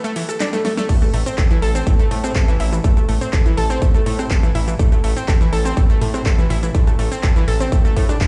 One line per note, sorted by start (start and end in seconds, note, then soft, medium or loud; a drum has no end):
0.04 0.09 A3 loud
0.04 closed hi-hat soft
0.04 shaker soft
0.16 0.21 E3 medium
0.16 open hi-hat loud
0.29 0.32 A4 medium
0.29 cross-stick medium
0.29 closed hi-hat soft
0.29 shaker medium
0.40 0.46 D4 medium
0.40 snare medium
0.40 clap loud
0.40 closed hi-hat loud
0.40 shaker medium
0.53 0.58 A3 medium
0.53 snare medium
0.53 closed hi-hat soft
0.53 shaker soft
0.65 0.70 A3 medium
0.65 snare medium
0.65 open hi-hat loud
0.77 0.82 A3 loud
0.77 snare medium
0.77 closed hi-hat soft
0.77 shaker medium
0.89 1.10 A1 medium
0.89 0.92 A3 medium
0.89 kick loud
0.89 closed hi-hat loud
0.89 crash medium
0.89 shaker medium
1.02 1.05 A3 medium
1.02 cross-stick medium
1.02 closed hi-hat soft
1.02 shaker soft
1.14 1.24 A1 medium
1.14 1.19 A3 medium
1.14 open hi-hat loud
1.26 1.29 C4 loud
1.26 closed hi-hat soft
1.26 shaker medium
1.38 1.58 A1 loud
1.38 1.43 A4 medium
1.38 kick loud
1.38 clap loud
1.38 closed hi-hat loud
1.38 shaker medium
1.51 1.56 E3 loud
1.51 closed hi-hat soft
1.51 shaker soft
1.62 1.83 A1 medium
1.62 1.70 A4 loud
1.62 open hi-hat loud
1.75 1.83 C4 loud
1.75 closed hi-hat soft
1.75 shaker medium
1.87 2.07 A1 loud
1.87 1.90 A3 medium
1.87 kick loud
1.87 closed hi-hat loud
1.87 shaker medium
1.99 2.04 A3 loud
1.99 closed hi-hat soft
1.99 shaker soft
2.11 2.32 A2 loud
2.11 2.17 A3 medium
2.11 open hi-hat loud
2.24 2.27 C4 loud
2.24 cross-stick medium
2.24 closed hi-hat soft
2.24 shaker medium
2.35 2.56 A1 medium
2.35 2.41 A4 medium
2.35 kick loud
2.35 clap loud
2.35 closed hi-hat loud
2.35 shaker medium
2.48 2.53 E3 loud
2.48 closed hi-hat soft
2.48 shaker soft
2.60 2.80 A1 medium
2.60 2.65 E4 medium
2.60 open hi-hat loud
2.73 2.76 E3 medium
2.73 closed hi-hat soft
2.73 shaker medium
2.84 3.05 A1 loud
2.84 2.88 A3 medium
2.84 kick loud
2.84 closed hi-hat loud
2.84 shaker medium
2.97 3.00 A3 medium
2.97 cross-stick medium
2.97 closed hi-hat soft
2.97 shaker soft
3.09 3.19 A1 medium
3.09 3.14 A3 medium
3.09 open hi-hat loud
3.21 3.24 C4 loud
3.21 closed hi-hat soft
3.21 shaker medium
3.33 3.53 A1 loud
3.33 3.38 A4 medium
3.33 kick loud
3.33 clap loud
3.33 closed hi-hat loud
3.33 shaker medium
3.46 3.51 E3 loud
3.46 closed hi-hat soft
3.46 shaker soft
3.57 3.78 A1 medium
3.57 3.66 A4 loud
3.57 open hi-hat loud
3.70 3.78 C4 loud
3.70 closed hi-hat soft
3.70 shaker medium
3.82 4.02 A1 loud
3.82 3.85 A3 medium
3.82 kick loud
3.82 closed hi-hat loud
3.82 shaker medium
3.94 4.00 A3 loud
3.94 closed hi-hat soft
3.94 shaker soft
4.06 4.27 A2 loud
4.06 4.12 A3 medium
4.06 open hi-hat loud
4.19 4.22 C4 loud
4.19 cross-stick medium
4.19 closed hi-hat soft
4.19 shaker medium
4.31 4.51 A1 medium
4.31 4.36 A4 medium
4.31 kick loud
4.31 clap loud
4.31 closed hi-hat loud
4.31 shaker medium
4.43 4.48 E3 loud
4.43 closed hi-hat soft
4.43 shaker soft
4.55 4.75 A1 loud
4.55 4.60 E4 medium
4.55 open hi-hat loud
4.68 4.71 E3 medium
4.68 closed hi-hat soft
4.68 shaker medium
4.79 5.00 A1 loud
4.79 4.83 A3 medium
4.79 kick loud
4.79 closed hi-hat medium
4.79 shaker medium
4.92 4.95 A3 medium
4.92 cross-stick medium
4.92 closed hi-hat soft
4.92 shaker soft
5.04 5.14 A1 medium
5.04 5.09 A3 medium
5.04 open hi-hat loud
5.16 5.20 C4 loud
5.16 closed hi-hat soft
5.16 shaker medium
5.28 5.49 A1 loud
5.28 5.34 A4 medium
5.28 kick loud
5.28 clap loud
5.28 closed hi-hat loud
5.28 shaker medium
5.41 5.46 E3 loud
5.41 closed hi-hat soft
5.41 shaker soft
5.53 5.73 A1 medium
5.53 5.61 A4 loud
5.53 open hi-hat loud
5.65 5.73 C4 loud
5.65 closed hi-hat soft
5.65 shaker medium
5.77 5.97 A1 loud
5.77 5.80 A3 medium
5.77 kick loud
5.77 closed hi-hat medium
5.77 shaker medium
5.90 5.95 A3 loud
5.90 closed hi-hat soft
5.90 shaker soft
6.01 6.22 A2 loud
6.01 6.07 A3 medium
6.01 open hi-hat loud
6.14 6.17 C4 loud
6.14 cross-stick medium
6.14 closed hi-hat soft
6.14 shaker medium
6.26 6.46 A1 medium
6.26 6.31 A4 medium
6.26 kick loud
6.26 clap loud
6.26 closed hi-hat medium
6.26 shaker medium
6.38 6.43 E3 loud
6.38 closed hi-hat soft
6.38 shaker soft
6.50 6.71 A1 loud
6.50 6.56 E4 medium
6.50 open hi-hat loud
6.63 6.66 E3 medium
6.63 closed hi-hat soft
6.63 shaker medium
6.75 6.95 A1 loud
6.75 6.78 A3 medium
6.75 kick loud
6.75 closed hi-hat medium
6.75 shaker medium
6.87 6.90 A3 medium
6.87 cross-stick medium
6.87 closed hi-hat soft
6.87 shaker soft
6.99 7.09 A1 medium
6.99 7.04 A3 medium
6.99 open hi-hat loud
7.12 7.15 C4 loud
7.12 closed hi-hat soft
7.12 shaker medium
7.23 7.44 A1 loud
7.23 7.29 A4 medium
7.23 kick loud
7.23 clap loud
7.23 closed hi-hat medium
7.23 shaker medium
7.36 7.41 E3 loud
7.36 closed hi-hat soft
7.36 shaker soft
7.48 7.68 A1 loud
7.48 7.56 A4 loud
7.48 open hi-hat loud
7.60 7.68 C4 loud
7.60 closed hi-hat soft
7.60 shaker medium
7.72 7.93 A1 loud
7.72 7.75 A3 medium
7.72 kick loud
7.72 closed hi-hat medium
7.72 shaker medium
7.85 7.90 A3 loud
7.85 closed hi-hat soft
7.85 shaker soft
7.97 8.17 A2 loud
7.97 8.02 A3 medium
7.97 kick medium
7.97 open hi-hat loud
8.09 8.17 D4 medium
8.09 cross-stick medium
8.09 closed hi-hat soft
8.09 shaker medium
8.21 8.27 A1 loud
8.21 8.26 E4 medium
8.21 kick loud
8.21 clap loud
8.21 closed hi-hat medium
8.21 shaker medium